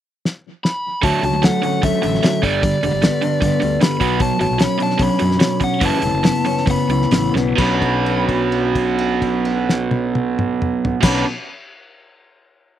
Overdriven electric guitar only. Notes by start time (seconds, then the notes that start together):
1.02 D3 F#3 A3
1.22 D3 F#3
1.42 D3 F#3
1.62 D3 F#3
1.82 D3 F#3
2.02 D3 F#3
2.23 D3 F#3
2.42 G2 D3 G3
2.62 G2 D3
2.83 G2 D3
3.02 G2 D3
3.22 G2 D3
3.41 G2 D3
3.60 G2 D3
3.81 G2 D3
4.00 B2 F#3 B3
4.20 B2 F#3
4.39 B2 F#3
4.58 B2 F#3
4.78 B2 F#3
4.98 B2 F#3
5.19 B2 F#3
5.39 B2 F#3
5.60 B2 F#3
5.81 F#2 C#3 E3
6.02 F#2 C#3
6.23 F#2 C#3
6.45 F#2 C#3
6.66 F#2 C#3
6.90 F#2 C#3
7.12 F#2 C#3
7.34 F#2 C#3
7.56 B2 F#3 B3
11.01 B2 F#3 B3
11.05 D4